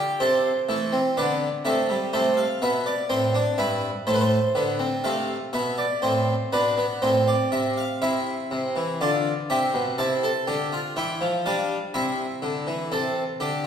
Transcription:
0.00 0.19 G4 medium
0.00 0.17 F5 medium
0.20 0.50 C3 medium
0.20 0.50 A4 medium
0.20 1.14 C5 medium
0.69 0.99 E3 medium
0.69 0.92 A3 medium
0.93 1.16 C4 loud
1.17 1.47 D3 medium
1.17 1.47 B3 medium
1.17 1.47 D5 medium
1.65 1.95 C3 medium
1.65 1.89 A3 loud
1.65 1.95 E5 medium
1.90 2.13 G3 medium
2.13 2.44 C3 medium
2.13 2.43 A3 loud
2.13 2.37 C5 medium
2.37 2.61 F5 medium
2.62 2.92 B2 medium
2.62 2.92 B3 medium
2.62 2.86 E5 medium
2.86 3.10 D5 medium
3.09 3.40 A2 medium
3.09 3.34 C4 medium
3.09 3.40 C5 medium
3.34 3.58 D4 medium
3.58 3.89 G2 medium
3.58 3.89 E4 medium
3.58 3.89 B4 medium
4.07 4.37 A2 medium
4.07 4.37 A3 medium
4.07 4.14 C5 medium
4.14 4.22 B4 medium
4.21 5.02 C5 medium
4.55 4.86 D3 medium
4.55 4.80 B3 medium
4.79 5.04 C4 medium
5.04 5.35 C3 medium
5.04 5.35 A3 medium
5.04 5.35 F5 medium
5.53 5.84 B2 medium
5.53 5.84 B3 loud
5.53 5.78 E5 medium
5.78 6.02 D5 medium
6.02 6.33 A2 medium
6.02 6.34 C4 medium
6.02 6.33 C5 medium
6.53 6.84 B2 medium
6.53 6.77 D4 medium
6.53 6.83 B4 medium
6.77 7.02 B3 medium
7.02 7.33 A2 medium
7.02 7.98 C4 medium
7.02 7.26 C5 medium
7.28 7.51 D5 medium
7.52 7.83 C3 medium
7.52 7.76 E5 medium
7.77 8.01 F5 medium
8.02 8.32 C3 medium
8.02 8.98 E4 medium
8.02 8.98 E5 medium
8.51 8.75 C3 medium
8.76 9.00 E3 medium
9.01 9.31 D3 medium
9.01 9.32 F4 medium
9.01 9.32 D5 medium
9.50 9.74 C3 loud
9.50 9.80 G4 medium
9.50 9.81 E5 medium
9.74 9.98 B2 medium
9.98 10.29 C3 medium
9.98 10.23 E4 medium
9.98 10.93 A5 medium
10.23 10.47 A4 medium
10.47 10.78 D3 medium
10.47 10.71 G4 medium
10.72 10.96 F4 medium
10.96 11.20 E3 medium
10.96 11.27 E4 medium
10.96 11.27 G5 medium
11.21 11.45 F3 medium
11.46 11.76 G3 medium
11.46 11.76 D4 medium
11.46 11.76 F5 medium
11.94 12.25 C3 medium
11.94 12.89 E4 medium
11.94 13.67 E5 medium
12.42 12.67 D3 loud
12.67 12.91 E3 medium
12.92 13.22 C3 medium
12.92 13.22 A4 medium
13.40 13.67 D3 loud
13.40 13.64 G4 medium

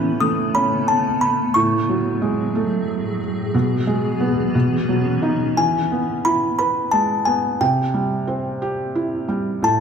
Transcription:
0.00 1.51 A2 medium
0.00 1.52 C#3 medium
0.00 1.18 E3 soft
0.00 1.52 A3 medium
0.00 1.51 B3 medium
0.00 0.22 B5 medium
0.20 1.51 A3 medium
0.20 0.36 D#6 medium
0.55 1.52 C#4 medium
0.55 0.89 B5 medium
0.88 1.22 A5 medium
1.21 1.52 B5 medium
1.54 3.52 A2 medium
1.54 3.51 A2 medium
1.54 3.52 F#3 medium
1.54 4.51 G#4 medium
1.54 4.84 C#6 medium
1.89 3.18 F#3 soft
2.22 3.50 G#3 medium
2.55 3.51 A3 medium
3.53 4.53 B2 medium
3.53 4.52 B2 medium
3.53 4.53 E3 medium
3.53 5.55 B3 medium
3.87 4.52 G#3 soft
4.20 4.53 B3 soft
4.53 5.54 B2 medium
4.53 5.56 D#3 medium
4.53 5.55 C#4 medium
4.89 5.55 F#3 soft
5.22 5.56 D#4 medium
5.57 7.56 E3 soft
5.57 6.22 G#5 medium
5.92 7.23 B3 soft
6.25 7.56 E4 soft
6.25 6.57 B5 medium
6.59 7.57 B4 soft
6.59 6.90 B5 medium
6.92 7.59 G#3 soft
6.92 7.27 A5 medium
7.25 7.60 B3 soft
7.25 7.57 G#5 medium
7.61 9.59 C3 medium
7.61 8.33 G5 medium
7.94 9.25 G3 soft
8.27 9.59 C4 soft
8.62 9.60 G4 soft
8.95 9.61 E4 soft
9.28 9.62 G3 soft
9.62 9.80 A2 medium
9.62 9.80 A5 medium

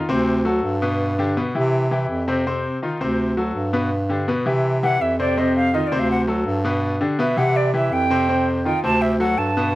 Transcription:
0.08 0.59 D2 loud
0.08 0.39 C3 loud
0.08 0.39 C4 medium
0.08 0.39 C5 medium
0.45 0.75 F#3 medium
0.45 0.75 F#4 medium
0.45 0.75 A4 medium
0.63 1.48 G2 loud
0.82 1.12 B2 medium
0.82 1.12 B3 medium
0.82 1.12 B4 medium
1.19 1.33 D3 medium
1.19 1.33 D4 medium
1.19 1.34 G4 medium
1.37 1.52 B2 medium
1.37 1.52 B3 medium
1.37 1.52 B4 medium
1.54 2.05 C3 loud
1.54 1.85 E3 medium
1.54 1.85 E4 medium
1.54 1.85 G4 medium
1.91 2.21 E3 medium
1.91 2.21 E4 medium
1.91 2.21 G4 medium
2.09 2.67 F2 medium
2.28 2.43 C3 medium
2.28 2.43 C4 medium
2.28 2.43 C5 medium
2.47 2.76 C3 medium
2.47 2.76 C4 medium
2.47 2.76 C5 medium
2.82 2.97 D#3 medium
2.82 2.98 D#4 medium
2.82 2.98 F4 medium
3.00 3.51 D2 loud
3.00 3.30 C3 medium
3.00 3.31 C4 medium
3.00 3.31 C5 medium
3.37 3.67 F#3 medium
3.37 3.67 F#4 medium
3.37 3.67 A4 medium
3.55 4.40 G2 loud
3.73 3.88 B2 medium
3.73 3.88 B3 medium
3.73 3.88 B4 medium
4.09 4.24 D3 medium
4.09 4.25 D4 medium
4.09 4.25 G4 medium
4.28 4.43 B2 medium
4.28 4.43 B3 medium
4.28 4.43 B4 medium
4.45 4.96 C3 loud
4.45 4.76 E3 medium
4.45 4.76 E4 medium
4.45 4.76 G4 medium
4.83 5.13 E3 medium
4.83 5.13 E4 medium
4.83 5.13 G4 medium
4.83 5.03 F#5 loud
5.00 5.85 F2 loud
5.00 5.19 E5 medium
5.19 5.34 C3 medium
5.19 5.34 C4 medium
5.19 5.34 C5 medium
5.19 5.40 D5 medium
5.37 5.67 C3 medium
5.37 5.67 C4 medium
5.37 5.67 C5 medium
5.37 5.55 D#5 medium
5.56 5.76 F5 loud
5.74 5.88 D#3 medium
5.74 5.89 D#4 medium
5.74 5.89 F4 medium
5.74 5.89 D#5 medium
5.87 6.42 D2 loud
5.87 6.01 D5 medium
5.92 6.21 C3 medium
5.92 6.22 C4 medium
5.92 6.22 C5 loud
5.99 6.10 F5 medium
6.11 6.21 F#5 medium
6.27 6.58 F#3 medium
6.27 6.58 F#4 medium
6.27 6.58 A4 medium
6.46 7.04 G2 loud
6.64 6.94 B2 medium
6.64 6.95 B3 medium
6.64 6.95 B4 medium
7.01 7.16 D3 medium
7.01 7.16 D4 medium
7.01 7.16 G4 medium
7.19 7.34 B2 medium
7.19 7.34 B3 medium
7.19 7.34 B4 medium
7.19 7.39 E5 medium
7.36 7.88 C3 loud
7.36 7.67 E3 medium
7.36 7.67 E4 medium
7.36 7.67 G4 medium
7.36 7.58 F#5 loud
7.56 7.74 D5 medium
7.74 8.03 E3 medium
7.74 8.04 E4 medium
7.74 8.04 G4 medium
7.74 7.94 E5 medium
7.91 8.77 F2 loud
7.91 8.47 G5 medium
8.10 8.25 C3 medium
8.10 8.25 C4 medium
8.10 8.26 C5 loud
8.29 8.58 C3 medium
8.29 8.59 C4 medium
8.29 8.59 C5 medium
8.65 8.80 D#3 medium
8.65 8.80 D#4 medium
8.65 8.80 F4 medium
8.65 8.82 G5 medium
8.82 9.33 D2 loud
8.82 9.13 C3 medium
8.82 9.13 C4 medium
8.82 9.14 C5 medium
8.82 9.03 A5 loud
9.02 9.19 E5 medium
9.20 9.50 F#3 medium
9.20 9.50 F#4 medium
9.20 9.50 A4 medium
9.20 9.39 F#5 loud
9.37 9.75 G2 loud
9.37 9.75 A5 medium
9.57 9.75 B2 medium
9.57 9.75 B3 medium
9.57 9.75 B4 medium

